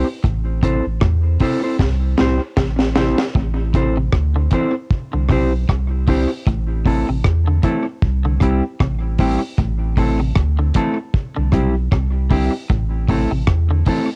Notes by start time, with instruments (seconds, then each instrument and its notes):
0.24 sub bass A1, clean electric guitar A2, kick, hi-hat pedal
0.63 clean electric guitar C3 C4 E4 A4 C5, kick, closed hi-hat
0.87 sub bass A1
1.01 sub bass E2, clean electric guitar A2, kick, cross-stick
1.40 clean electric guitar C3 C4 E4 A4 C5, kick, open hi-hat
1.64 clean electric guitar C4 E4 A4 C5
1.79 sub bass C2, clean electric guitar G2, kick, snare
2.18 sub bass C2, clean electric guitar A2 C4 E4 G4 C5, snare
2.57 sub bass A1, clean electric guitar C3, kick, snare
2.79 snare
2.96 clean electric guitar C3 C4 E4 G4 C5, snare
3.18 snare
3.35 sub bass A1, clean electric guitar A2, kick
3.74 clean electric guitar C3 C4 E4 A4 C5, kick, closed hi-hat
3.97 clean electric guitar C3
4.13 sub bass D2, kick, cross-stick
4.36 clean electric guitar D3
4.51 clean electric guitar E3 C4 E4 A4 C5, kick, closed hi-hat
4.91 kick
5.13 sub bass C2, clean electric guitar D3
5.29 sub bass B1, clean electric guitar C3 C4 E4 G4 C5, kick, cross-stick, open hi-hat
5.69 sub bass C2, clean electric guitar C3, kick, cross-stick, hi-hat pedal
6.07 clean electric guitar D3 C4 E4 G4 C5, kick, open hi-hat
6.46 sub bass A1, clean electric guitar A2, kick, hi-hat pedal
6.85 clean electric guitar C3 A3 C4 E4 A4, kick, open hi-hat
7.09 sub bass A1, clean electric guitar C3
7.24 sub bass E2, kick, cross-stick, hi-hat pedal
7.48 clean electric guitar D3
7.63 clean electric guitar E3 A3 C4 E4 A4, kick, closed hi-hat
8.02 sub bass C2, kick
8.25 clean electric guitar D3
8.40 sub bass C2, clean electric guitar C3 G3 C4 E4 G4, kick, cross-stick, closed hi-hat
8.80 sub bass A1, clean electric guitar C3, kick, cross-stick
9.18 clean electric guitar A2 G3 C4 E4 G4, kick, open hi-hat
9.58 sub bass A1, clean electric guitar A2, kick, hi-hat pedal
9.97 clean electric guitar C3 A3 C4 E4 A4, kick, open hi-hat
10.20 clean electric guitar C3
10.36 sub bass D2, kick, cross-stick, hi-hat pedal
10.59 clean electric guitar D3
10.74 clean electric guitar E3 A3 C4 E4 A4, kick, closed hi-hat
11.14 kick
11.36 sub bass C2, clean electric guitar D3
11.52 sub bass B1, clean electric guitar C3 G3 C4 E4 G4, kick, cross-stick, closed hi-hat
11.92 sub bass C2, clean electric guitar C3, kick, cross-stick
12.30 clean electric guitar D3 G3 C4 E4 G4, kick, open hi-hat
12.70 sub bass A1, clean electric guitar A2, kick, hi-hat pedal
13.09 clean electric guitar C3 A3 C4 E4 A4, kick, open hi-hat
13.31 sub bass A1, clean electric guitar C3
13.47 sub bass E2, kick, cross-stick, hi-hat pedal
13.71 clean electric guitar D3
13.86 clean electric guitar E3 A3 C4 E4 A4, kick, open hi-hat